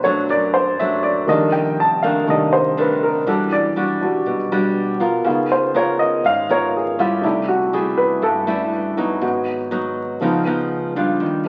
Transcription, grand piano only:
0.00 1.30 F#3 soft
0.00 1.27 A3 soft
0.00 1.28 D4 soft
0.00 1.29 B4 medium
0.00 0.54 C5 medium
0.00 0.28 C#5 medium
0.30 0.53 D5 medium
0.54 0.78 C5 medium
0.79 1.03 E5 medium
1.03 1.27 D5 medium
1.27 1.60 D#3 soft
1.27 1.61 G3 soft
1.27 1.61 A3 soft
1.27 1.61 D4 soft
1.27 1.52 D#5 medium
1.52 1.77 G5 medium
1.80 2.03 A5 medium
2.03 2.26 F5 medium
2.27 2.50 D#3 soft
2.27 2.50 G3 soft
2.27 2.50 A3 soft
2.27 2.50 D4 soft
2.27 2.53 D#5 medium
2.53 2.76 C5 medium
2.81 3.03 B4 soft
3.03 3.26 A#4 medium
3.28 3.52 A4 soft
3.52 3.67 D5 medium
4.01 4.34 G3 soft
4.01 4.34 D4 soft
4.01 4.35 F#4 soft
5.25 7.20 B3 soft
5.25 7.20 D#4 soft
5.25 6.99 F4 soft
5.52 5.75 C5 medium
5.76 6.00 C#5 medium
5.99 6.24 D#5 medium
6.26 6.49 F5 medium
6.51 6.75 C#5 medium
6.77 7.00 G#4 soft
7.00 7.24 F4 medium
7.22 7.57 A3 soft
7.22 7.57 D4 soft
7.22 7.24 D#4 soft
7.22 7.49 E4 medium
7.48 7.73 F#4 medium
7.74 7.98 G#4 medium
7.97 8.22 B4 medium
8.23 9.18 A4 medium
8.47 8.70 A3 soft
8.47 8.70 D4 soft
8.47 8.70 E4 soft
9.21 9.55 B3 soft
9.21 9.55 F#4 soft
10.21 10.92 F3 soft
10.21 10.92 B3 soft
10.21 10.93 D#4 soft

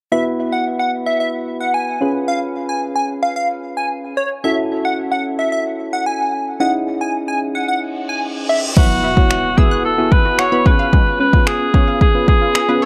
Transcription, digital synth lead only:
0.12 0.24 E5 loud
0.52 0.64 F#5 medium
0.79 0.91 F#5 medium
1.06 1.18 E5 medium
1.20 1.32 E5 medium
1.60 1.72 F#5 medium
1.74 2.12 G#5 medium
2.28 2.40 F5 medium
2.69 2.80 G#5 medium
2.96 3.07 G#5 medium
3.23 3.34 F5 medium
3.36 3.48 F5 medium
3.77 3.88 G#5 medium
4.17 4.29 C#5 medium
4.44 4.56 E5 loud
4.85 4.96 F#5 medium
5.12 5.23 F#5 medium
5.39 5.50 E5 medium
5.52 5.64 E5 medium
5.93 6.05 F#5 medium
6.06 6.45 G#5 medium
6.60 6.72 F#5 medium
7.01 7.13 G#5 medium
7.28 7.40 G#5 medium
7.55 7.67 F#5 medium
7.68 7.80 F#5 medium
8.09 8.21 G#5 medium
8.49 8.61 E5 medium

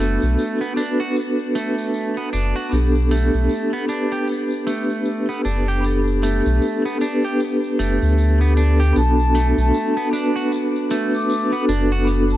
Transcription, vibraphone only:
0.00 0.72 B3 medium
0.00 0.73 D4 medium
0.00 0.74 F#4 medium
0.00 0.75 A4 loud
0.74 2.67 B3 medium
0.74 2.68 D4 medium
0.78 2.69 F#4 medium
0.78 2.70 B4 loud
2.69 3.84 B3 medium
2.69 3.85 D4 medium
2.69 3.86 G4 medium
2.75 3.87 A4 loud
3.86 5.79 B3 medium
3.86 5.80 D4 medium
3.86 5.81 G4 medium
3.92 5.82 B4 loud
5.81 6.95 B3 medium
5.81 6.96 D4 medium
5.81 6.97 G4 medium
5.86 6.98 A4 loud
6.99 8.35 B3 medium
6.99 8.36 D4 medium
6.99 8.37 G4 medium
7.05 8.38 B4 medium
8.40 8.91 B3 medium
8.40 8.92 D4 medium
8.40 8.92 G4 medium
8.40 8.93 A4 medium
8.93 10.07 B3 medium
8.93 10.08 D4 medium
8.93 10.09 F#4 medium
8.99 10.10 A4 loud
10.10 11.46 B3 medium
10.10 11.47 D4 medium
10.10 11.48 F#4 medium
10.16 11.49 B4 loud
11.51 12.03 B3 medium
11.51 12.03 D4 medium
11.51 12.04 F#4 medium
11.51 12.04 A4 medium
12.05 12.37 B3 loud
12.05 12.37 D4 medium
12.05 12.37 F#4 medium
12.11 12.37 A4 loud

